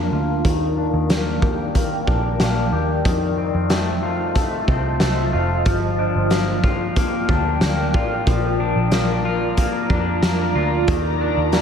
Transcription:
Already playing: F2 F3 A#3 D4 F4 A#4 F5
0.12 D2 F4
0.44 D#2 D#3 D5 G5, kick, closed hi-hat
0.77 D4
0.93 D#2
1.10 A#3, snare, closed hi-hat
1.42 G4, kick
1.75 A#3, kick, closed hi-hat
2.07 A#1 D4, kick
2.40 A#1 A#3, snare, closed hi-hat
2.73 D#2 G4
3.05 F2 D#3 F4 C5 D#5 A5, kick, closed hi-hat
3.38 C4
3.54 F2
3.70 A3, snare, closed hi-hat
4.03 F4
4.35 A3, kick, closed hi-hat
4.68 C2 C4, kick
5.00 C2 A3, snare, closed hi-hat
5.33 F1 F4
5.66 G1 F3 A#4 D5 G5, kick, closed hi-hat
5.99 D4
6.16 G1
6.30 A#3, snare, closed hi-hat
6.64 F4, kick
6.96 A#3, kick, closed hi-hat
7.29 D2 D4, kick
7.61 D2 A#3, snare, closed hi-hat
7.94 A1 F4, kick
8.27 A#1 F3 F4 A#4 A#5, kick, closed hi-hat
8.60 D4
8.76 A#1
8.91 A#3, snare, closed hi-hat
9.25 F4
9.57 A#3, kick, closed hi-hat
9.90 F2 D4, kick
10.23 F2 A#3, snare, closed hi-hat
10.55 D2 F4
10.88 D#2 D#3, kick, closed hi-hat
11.21 D4
11.37 D#2
11.52 A#3, snare, closed hi-hat

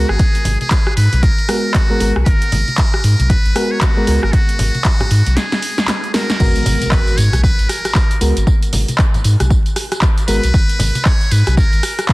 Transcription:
Already playing: F#4
0.09 G#1 G#4, cross-stick
0.19 kick, closed hi-hat
0.35 closed hi-hat
0.45 G#1, open hi-hat, high conga, low conga
0.61 G#4, closed hi-hat, high conga
0.71 kick, clap, closed hi-hat
0.87 cross-stick
0.97 G#2 B4, open hi-hat
1.12 B1, closed hi-hat, high conga
1.23 A#4, kick, closed hi-hat
1.38 closed hi-hat
1.48 G#3 B3 F#4 A#4, cross-stick, open hi-hat
1.74 F#4, kick, clap, closed hi-hat
1.90 G#3 B3 F#4 A#4
2.00 G#1 G#3 B3 F#4 A#4, open hi-hat
2.16 B1, cross-stick
2.26 G#1 A#4, kick, closed hi-hat
2.42 closed hi-hat
2.52 G#1, open hi-hat, high conga, low conga
2.68 closed hi-hat, high conga
2.78 kick, clap, closed hi-hat
2.94 cross-stick
3.04 G#2, open hi-hat
3.19 B1, closed hi-hat, high conga
3.30 B4, kick, closed hi-hat
3.45 G#1, closed hi-hat
3.55 G#3 B3 F#4 A#4, cross-stick, open hi-hat
3.71 C#5
3.81 F#4, kick, clap, closed hi-hat
3.97 G#3 B3 F#4 A#4
4.07 C#2 G#3 B3 F#4 A#4, open hi-hat
4.23 G#1 A#4, cross-stick
4.33 F#4, kick, closed hi-hat
4.49 closed hi-hat
4.59 G#1, open hi-hat, high conga, low conga
4.75 closed hi-hat, high conga
4.85 kick, clap, closed hi-hat
5.00 cross-stick, closed hi-hat, low conga
5.11 G#2, open hi-hat
5.26 B1, closed hi-hat, high conga
5.36 G#4, snare, closed hi-hat
5.52 snare, closed hi-hat
5.62 open hi-hat
5.78 snare, closed hi-hat
5.88 snare, clap, closed hi-hat
6.04 closed hi-hat
6.14 G#3 B3 F#4 A#4, snare, open hi-hat
6.30 snare, closed hi-hat
6.39 G#1 G#3 B3 F#4 A#4, kick, crash, tambourine, impact
6.56 closed hi-hat, tambourine
6.66 G#1, open hi-hat, tambourine, high conga, low conga
6.82 closed hi-hat, tambourine, high conga
6.92 B4, kick, clap, tambourine
7.08 closed hi-hat, tambourine
7.17 G#2 C#5, open hi-hat, tambourine
7.32 B1, cross-stick, closed hi-hat, tambourine, high conga
7.44 B4, kick, tambourine
7.59 G#1, closed hi-hat, tambourine
7.69 A#4, cross-stick, open hi-hat, tambourine
7.85 cross-stick, closed hi-hat, tambourine
7.95 kick, clap, tambourine
8.11 closed hi-hat, tambourine
8.21 C#2 G#3 B3 F#4 A#4, open hi-hat, tambourine
8.37 G#1, closed hi-hat, tambourine
8.47 kick, tambourine
8.63 closed hi-hat, tambourine
8.73 G#1, open hi-hat, tambourine, high conga, low conga
8.88 closed hi-hat, tambourine, high conga
8.98 kick, clap, tambourine
9.14 closed hi-hat, tambourine, low conga
9.24 G#2, open hi-hat, tambourine
9.40 B1, cross-stick, closed hi-hat, tambourine, high conga
9.50 kick, tambourine
9.66 closed hi-hat, tambourine
9.76 cross-stick, open hi-hat, tambourine
9.92 cross-stick, closed hi-hat, tambourine
10.02 kick, clap, tambourine
10.18 closed hi-hat, tambourine
10.28 G#1 G#3 B3 F#4 A#4 B4, open hi-hat, tambourine
10.43 B1, closed hi-hat, tambourine
10.54 G#1, kick, tambourine
10.69 closed hi-hat, tambourine
10.79 G#1, open hi-hat, tambourine, high conga, low conga
10.95 closed hi-hat, tambourine, high conga
11.05 C#5, kick, clap, tambourine
11.21 closed hi-hat, tambourine
11.31 G#2 B4, open hi-hat, tambourine
11.47 B1, cross-stick, closed hi-hat, tambourine, high conga
11.57 A#4, kick, tambourine
11.73 G#1, closed hi-hat, tambourine
11.83 cross-stick, open hi-hat, tambourine
11.99 cross-stick, closed hi-hat, tambourine
12.09 kick, clap, tambourine

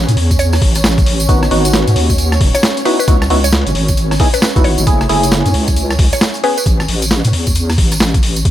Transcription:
Already playing: C#4 C#5
0.08 A2, closed hi-hat, tambourine
0.17 E2, open hi-hat
0.31 kick, closed hi-hat, tambourine
0.39 C#5, closed hi-hat, tambourine
0.52 cross-stick, open hi-hat, tambourine
0.62 A1, kick, open hi-hat
0.75 cross-stick, closed hi-hat, tambourine
0.84 snare, tambourine
0.98 kick, closed hi-hat, tambourine
1.06 open hi-hat
1.20 closed hi-hat, tambourine
1.29 G#1 B3 D#4 F#4, kick, closed hi-hat, tambourine
1.43 cross-stick, tambourine
1.51 G#1 B3 D#4 F#4, open hi-hat
1.65 closed hi-hat, tambourine
1.73 snare, tambourine
1.87 G#2, closed hi-hat, tambourine
1.96 D#2, open hi-hat
2.10 kick, closed hi-hat, tambourine
2.18 closed hi-hat, tambourine
2.32 cross-stick, tambourine
2.41 D#1, kick, open hi-hat
2.55 C#5, cross-stick, closed hi-hat, tambourine
2.63 snare, tambourine
2.77 closed hi-hat, tambourine
2.85 B3 D#4 E4 F#4 B4, open hi-hat
2.99 B4, closed hi-hat, tambourine
3.08 C#2 B3 D#4 E4 F#4, kick, closed hi-hat, tambourine
3.22 cross-stick, tambourine
3.30 C#2 B3 D#4 E4 F#4, open hi-hat
3.44 C#5, closed hi-hat, tambourine
3.53 snare, tambourine
3.67 G#1, closed hi-hat, tambourine
3.75 G#1, open hi-hat
3.88 kick, closed hi-hat, tambourine
3.97 closed hi-hat, tambourine
4.11 cross-stick, open hi-hat, tambourine
4.20 B3 D#4 E4 G#4, kick, open hi-hat
4.34 B4, cross-stick, closed hi-hat, tambourine
4.42 B4, snare, tambourine
4.56 C#2 B3 D#4 E4 F#4, kick, closed hi-hat, tambourine
4.64 G#1 C#5, open hi-hat
4.78 G#1, closed hi-hat, tambourine
4.87 F#1 A3 E4 G#4, kick, closed hi-hat, tambourine
5.01 cross-stick, tambourine
5.09 F#1 A3 E4 G#4, open hi-hat
5.23 closed hi-hat, tambourine
5.32 snare, tambourine
5.46 F#2, closed hi-hat, tambourine
5.54 C#2, open hi-hat
5.68 kick, closed hi-hat, tambourine
5.76 closed hi-hat, tambourine
5.90 cross-stick, tambourine
5.99 C#2, kick, open hi-hat
6.13 C#5, cross-stick, closed hi-hat, tambourine
6.21 snare, tambourine
6.34 closed hi-hat, tambourine
6.44 B3 C#4 G#4 B4, open hi-hat
6.58 B4, closed hi-hat, tambourine
6.66 A1, kick, closed hi-hat, tambourine
6.80 cross-stick, tambourine
6.88 A1, open hi-hat
7.02 closed hi-hat, tambourine
7.11 snare, tambourine
7.24 A2, closed hi-hat, tambourine
7.33 E2, open hi-hat
7.47 kick, closed hi-hat, tambourine
7.55 closed hi-hat, tambourine
7.69 cross-stick, open hi-hat, tambourine
7.78 A1, kick, open hi-hat
7.92 cross-stick, closed hi-hat, tambourine
8.00 snare, tambourine
8.14 kick, closed hi-hat, tambourine
8.23 open hi-hat
8.36 closed hi-hat, tambourine
8.45 G#1, kick, closed hi-hat

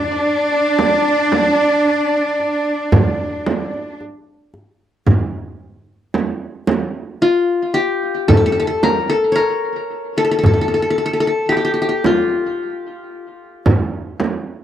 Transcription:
Already playing: D4 D5
0.25 darbuka ka
0.79 darbuka tek, frame drum
1.32 darbuka tek, frame drum
1.87 darbuka ka
2.40 darbuka ka
2.92 frame drum, darbuka dum
3.46 darbuka tek, frame drum
3.74 darbuka ka
4.01 darbuka ka
4.54 darbuka ka
5.07 frame drum, darbuka dum
6.14 darbuka tek, frame drum
6.67 darbuka tek, frame drum
7.22 F4
7.74 G4
8.28 A4, frame drum, darbuka dum
8.37 A4
8.46 A4
8.52 A4
8.60 A4
8.67 A4
8.83 A#4, darbuka tek, frame drum
9.10 A4
9.32 A#4 C#5
9.37 darbuka ka
10.18 A4
10.25 A4
10.31 A4
10.39 A4
10.44 A4, frame drum, darbuka dum
10.54 A4
10.61 A4
10.68 A4
10.74 A4
10.82 A4
10.90 A4
10.98 A4
11.06 A4
11.13 A4
11.20 A4
11.27 A4
11.49 G4, darbuka tek
11.57 G4
11.65 G4
11.74 G4
11.82 G4
11.89 G4
12.04 F4, darbuka tek, frame drum
13.66 frame drum, darbuka dum
14.20 darbuka tek, frame drum

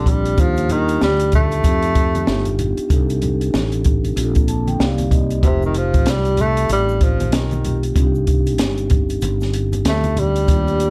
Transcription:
Already playing: A#1 D3 G3 C4 D4 F4 G4
0.06 G3, kick, closed hi-hat
0.25 closed hi-hat
0.36 D#2 F3 G3 D4 D#4 F4 G4, kick, closed hi-hat, shaker
0.57 closed hi-hat, shaker
0.69 D#3, closed hi-hat, low conga, shaker
0.88 closed hi-hat, shaker
1.01 D2 G3, snare, shaker
1.20 closed hi-hat, shaker
1.32 A3, kick, closed hi-hat, low conga, shaker
1.51 closed hi-hat, high conga, shaker
1.63 F2 A3 C4 D#4 F4 G4, kick, closed hi-hat, shaker
1.82 closed hi-hat, shaker
1.95 kick, closed hi-hat, shaker
2.15 closed hi-hat, high conga, shaker
2.26 G1 B3 D4 D#4 F4 G4, snare, shaker
2.45 closed hi-hat, high conga, shaker
2.59 closed hi-hat, low conga, shaker
2.77 closed hi-hat, shaker
2.89 C2 C4 D4 D#4 G4 A4, kick, closed hi-hat, shaker
3.10 closed hi-hat, shaker
3.22 closed hi-hat, low conga, shaker
3.41 closed hi-hat, shaker
3.54 A1, snare, shaker
3.72 closed hi-hat, shaker
3.84 kick, closed hi-hat, low conga, shaker
4.04 closed hi-hat, high conga, shaker
4.16 A#1 A#3 C4 D4 F4 G4, closed hi-hat, shaker
4.24 A4
4.35 kick, closed hi-hat, shaker
4.48 A5, closed hi-hat, shaker
4.67 G5, closed hi-hat, high conga, shaker
4.79 C2 A#3 C4 D#4 G4 D5 F5, snare, shaker
4.98 closed hi-hat, high conga, shaker
5.11 D#5, kick, closed hi-hat, low conga, shaker
5.30 closed hi-hat, shaker
5.42 F1 B2 A3 C4 D#4 F4 G4, kick, closed hi-hat, shaker
5.46 C3
5.62 D#3, shaker
5.74 F3, closed hi-hat, shaker
5.94 kick, closed hi-hat, shaker
6.06 C2, snare, closed hi-hat, shaker
6.10 G3
6.25 closed hi-hat, shaker
6.37 A3, closed hi-hat, low conga, shaker
6.57 closed hi-hat, shaker
6.69 A1 G3, closed hi-hat, shaker
6.89 shaker
7.01 F3, kick, closed hi-hat, shaker
7.20 closed hi-hat, high conga, shaker
7.32 B1 D#3, snare, closed hi-hat, shaker
7.51 closed hi-hat, high conga, shaker
7.64 A3 C4 D#4 F4 G4, closed hi-hat, low conga, shaker
7.83 closed hi-hat, shaker
7.95 C2 G3 C4 D4 D#4 F4, kick, closed hi-hat, shaker
8.03 G4
8.15 shaker
8.27 kick, closed hi-hat, shaker
8.46 closed hi-hat, shaker
8.58 G1, snare, closed hi-hat, shaker
8.78 closed hi-hat, shaker
8.90 kick, closed hi-hat, low conga, shaker
9.09 closed hi-hat, shaker
9.21 G1, closed hi-hat, shaker
9.41 snare, shaker
9.53 closed hi-hat, shaker
9.73 closed hi-hat, high conga, shaker
9.85 D2 A3, snare, closed hi-hat, shaker
10.04 closed hi-hat, high conga, shaker
10.17 G3, closed hi-hat, low conga, shaker
10.36 closed hi-hat, shaker
10.47 D#2 G3 A3 D4 F4 G4, kick, closed hi-hat, shaker
10.67 closed hi-hat, shaker
10.80 closed hi-hat, shaker

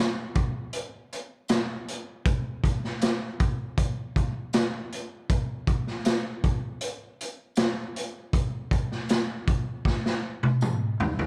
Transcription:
0.35 kick, closed hi-hat
0.73 closed hi-hat
1.12 closed hi-hat
1.48 snare, closed hi-hat, tambourine
1.88 closed hi-hat
2.26 kick, closed hi-hat
2.64 kick, closed hi-hat
2.84 snare
3.01 snare, closed hi-hat, tambourine
3.40 kick, closed hi-hat
3.77 kick, closed hi-hat
4.16 kick, closed hi-hat
4.53 snare, closed hi-hat, tambourine
4.92 closed hi-hat
5.30 kick, closed hi-hat
5.67 kick, closed hi-hat
5.87 snare
6.05 snare, closed hi-hat, tambourine
6.44 kick, closed hi-hat
6.81 closed hi-hat
7.21 closed hi-hat
7.56 snare, closed hi-hat, tambourine
7.96 closed hi-hat
8.33 kick, closed hi-hat
8.71 kick, closed hi-hat
8.92 snare
9.09 snare, closed hi-hat, tambourine
9.47 kick, closed hi-hat
9.85 kick, snare
10.06 snare
10.43 high tom
10.61 mid tom, tambourine
11.00 floor tom
11.19 floor tom

